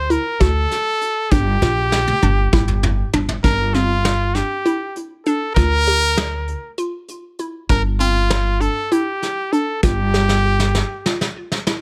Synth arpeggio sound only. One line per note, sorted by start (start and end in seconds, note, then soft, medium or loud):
0.10 0.30 E4 medium
0.40 0.81 F#4 medium
1.32 1.52 D4 medium
1.62 2.03 F4 medium
2.23 2.43 D4 medium
2.53 2.94 E4 medium
3.14 3.34 D4 medium
3.44 3.64 D4 medium
3.75 4.15 C4 medium
4.35 4.55 D4 medium
4.66 5.06 E4 medium
5.26 5.47 D4 medium
5.57 5.77 F4 medium
5.88 6.28 G4 medium
6.78 7.19 F4 medium
7.39 7.60 E4 medium
7.70 7.90 D4 medium
8.00 8.41 C4 medium
8.61 8.81 D4 medium
8.92 9.33 E4 medium
9.53 9.73 D4 medium
9.83 10.04 F4 loud
10.14 10.55 G4 medium
11.06 11.47 F4 medium
11.67 11.81 E4 medium